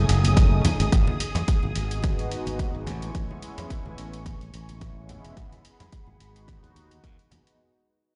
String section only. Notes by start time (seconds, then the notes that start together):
Already playing: A3 G#5 D#6
0.65 G#4
2.87 G#5 C#6
5.37 G#4 F#5 B5